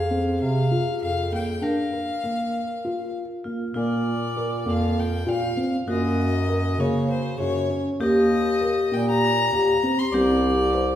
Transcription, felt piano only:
0.10 0.47 C4 medium
0.71 1.07 F4 medium
1.32 1.50 A#3 medium
1.62 1.80 D4 medium
1.92 2.11 A#4 medium
2.24 2.60 A#3 medium
2.85 3.21 F4 medium
3.45 3.63 A#3 medium
3.75 4.11 A#3 medium
4.37 4.54 A#4 medium
4.66 5.02 A#3 medium
5.27 5.45 F4 medium
5.57 5.75 C4 medium
5.88 6.24 A#3 medium
6.49 6.67 A#4 medium
6.79 7.15 A#3 medium
7.40 7.58 F#4 medium
7.70 7.88 C#4 medium
8.00 8.36 A#3 medium
8.61 8.79 A#4 medium
8.91 9.28 A#3 medium
9.53 9.71 G4 medium
9.83 10.01 C4 medium
10.14 10.50 C4 medium
10.74 10.92 C5 medium

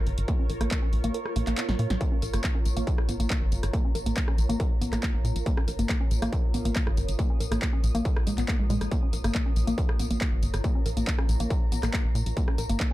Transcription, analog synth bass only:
0.07 0.15 G#1 medium
0.18 0.25 G#1 medium
0.50 0.58 A#1 medium
0.61 0.68 A#1 medium
0.93 1.01 A#1 loud
1.04 1.12 A#1 medium
1.36 1.44 A#1 loud
1.47 1.55 A#1 medium
1.69 1.76 A#1 medium
1.79 1.87 A#2 medium
1.90 1.98 A#1 medium
2.22 2.30 A#1 medium
2.34 2.41 G#1 medium
2.66 2.74 A#1 medium
2.77 2.84 A#1 medium
3.09 3.17 A#1 medium
3.20 3.27 A#1 medium
3.42 3.49 G#1 medium
3.52 3.60 G#1 loud
3.63 3.70 G#1 medium
3.95 4.03 A#1 medium
4.06 4.14 A#1 medium
4.38 4.46 A#1 loud
4.49 4.57 A#1 medium
4.81 4.89 A#1 medium
4.93 5.00 A#1 medium
5.14 5.22 A#1 medium
5.24 5.33 A#2 loud
5.36 5.43 A#1 medium
5.68 5.76 A#1 loud
5.79 5.86 G#1 medium
6.11 6.19 A#1 loud
6.22 6.30 A#1 medium
6.54 6.62 A#1 loud
6.65 6.73 A#1 medium
6.87 6.94 G#1 medium
6.97 7.05 G#1 loud
7.08 7.16 G#1 medium
7.40 7.48 A#1 medium
7.51 7.59 A#1 medium
7.83 7.92 A#1 loud
7.95 8.02 A#1 medium
8.27 8.35 A#1 medium
8.38 8.45 A#1 medium
8.59 8.67 A#1 medium
8.70 8.78 A#2 medium
8.81 8.88 A#1 medium
9.13 9.21 A#1 medium
9.24 9.32 G#1 medium
9.56 9.64 A#1 loud
9.67 9.75 A#1 medium
9.99 10.07 A#1 medium
10.10 10.18 A#1 medium
10.32 10.40 G#1 medium
10.42 10.51 G#1 loud
10.54 10.61 G#1 medium
10.86 10.94 A#1 loud
10.97 11.04 A#1 medium
11.29 11.37 A#1 medium
11.40 11.47 A#1 medium
11.72 11.80 A#1 medium
11.83 11.91 A#1 medium
12.05 12.12 A#1 medium
12.15 12.23 A#2 loud
12.26 12.34 A#1 medium
12.58 12.66 A#1 loud
12.70 12.77 G#1 medium

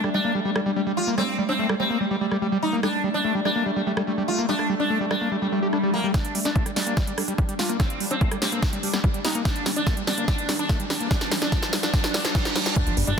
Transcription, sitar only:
0.14 0.33 D4 medium
0.97 1.09 F4 medium
1.18 1.36 C4 loud
1.49 1.67 C4 medium
1.80 1.98 C4 medium
2.63 2.75 D#4 medium
2.83 3.02 D4 loud
3.14 3.33 D4 medium
3.45 3.64 D4 medium
4.28 4.40 F4 medium
4.49 4.67 D4 loud
4.80 4.98 D4 medium
5.11 5.29 D4 loud
5.94 6.06 A#3 medium
6.14 6.33 D4 loud
6.45 6.64 D4 medium
6.76 6.95 D4 loud
7.59 7.71 F4 medium
7.80 7.98 C4 loud
8.11 8.29 C4 medium
8.42 8.60 C4 loud
9.25 9.37 D#4 medium
9.45 9.64 D4 medium
9.76 9.95 D4 medium
10.07 10.26 D4 medium
10.28 10.46 D4 loud
10.59 10.77 D4 medium
10.90 11.08 D4 medium
11.11 11.29 D4 loud
11.42 11.51 D4 medium
11.52 11.71 D4 loud
11.83 11.92 D4 medium
11.94 12.12 D4 loud
12.14 12.33 D4 loud
12.35 12.53 D4 loud
12.56 12.74 D4 loud
12.76 12.95 D4 loud
13.07 13.20 D4 medium

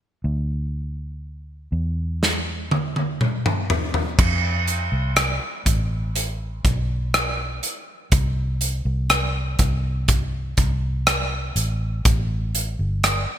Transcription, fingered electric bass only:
0.24 1.68 D2 medium
1.72 4.14 E2 medium
4.19 4.88 F2 medium
4.92 5.38 C2 medium
5.66 6.60 A1 medium
6.64 7.59 B1 medium
8.12 8.82 C2 loud
8.85 9.55 C2 medium
9.59 10.54 C2 medium
10.58 11.52 C2 medium
11.56 12.02 A1 medium
12.05 12.75 A1 medium
12.79 13.25 G1 medium

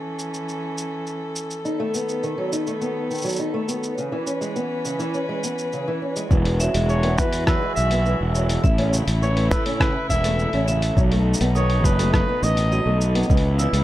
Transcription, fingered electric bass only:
6.31 6.67 E1 medium
6.75 7.18 E1 loud
7.18 7.54 E2 medium
7.77 8.13 B1 medium
8.21 8.56 E1 medium
8.64 9.00 A1 medium
9.08 9.51 A1 loud
9.51 9.87 A2 medium
10.10 10.46 E1 medium
10.54 10.89 A1 medium
10.97 11.33 B1 medium
11.41 11.84 B1 loud
11.84 12.20 F#1 medium
12.43 12.79 A1 medium
12.86 13.22 B1 medium
13.30 13.66 C#2 medium
13.73 13.84 C#2 loud

